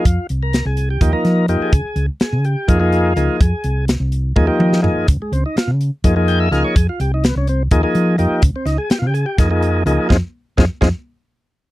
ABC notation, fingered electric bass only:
X:1
M:7/8
L:1/16
Q:1/4=125
K:Fm
V:1 name="Fingered electric bass" clef=bass
F,, z C,,3 C,,3 E,, z F,2 F,, z | D,, z D,, z2 D,2 z F,,4 D,, z | F,, z C,,3 C,,3 E,, z F,2 F,, z | D,, z D,, z2 D,2 z F,,4 D,, z |
F,, z C,,3 C,,3 E,, z F,2 F,, z | D,, z D,, z2 D,2 z F,,4 D,, z | F,, z3 F,, z F,, z6 z |]